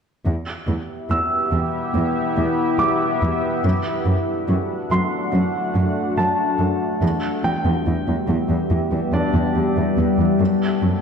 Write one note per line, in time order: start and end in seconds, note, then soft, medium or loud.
0.26 0.34 E2 soft
0.26 3.60 B3 medium
0.26 3.60 E4 soft
0.26 3.60 G4 soft
0.26 3.60 E5 medium
0.68 0.76 E2 soft
1.10 1.18 E2 soft
1.10 3.60 E6 soft
1.52 1.60 E2 soft
1.95 2.03 E2 soft
2.37 2.45 E2 soft
2.79 2.88 E2 soft
2.79 5.29 D6 soft
3.22 3.30 E2 soft
3.63 3.72 F#2 soft
3.63 7.02 A3 medium
3.63 7.02 D4 medium
3.63 7.02 F#4 medium
3.63 7.02 F#5 medium
4.06 4.14 F#2 soft
4.48 4.56 F#2 soft
4.91 4.99 F#2 soft
4.91 6.98 C6 soft
5.32 5.40 F#2 soft
5.75 5.83 F#2 soft
6.17 6.25 F#2 soft
6.17 6.98 A5 soft
6.59 6.67 F#2 soft
7.01 7.10 E2 soft
7.01 10.36 G3 medium
7.01 10.36 B3 medium
7.01 10.36 G4 soft
7.01 10.36 E5 medium
7.44 7.52 E2 soft
7.44 9.94 G5 soft
7.65 7.73 E2 soft
7.87 7.95 E2 soft
8.08 8.16 E2 soft
8.28 8.36 E2 soft
8.49 8.57 E2 soft
8.71 8.79 E2 soft
8.92 9.00 E2 soft
9.13 9.21 E2 soft
9.13 11.02 D4 soft
9.13 11.02 D5 soft
9.34 9.42 E2 soft
9.56 9.64 E2 soft
9.77 9.85 E2 soft
9.98 10.06 E2 soft
10.18 10.26 E2 soft
10.40 10.48 F#2 soft
10.40 11.02 F#3 medium
10.40 11.02 A3 medium
10.40 11.02 A4 medium
10.40 11.02 D5 soft
10.82 10.90 F#2 soft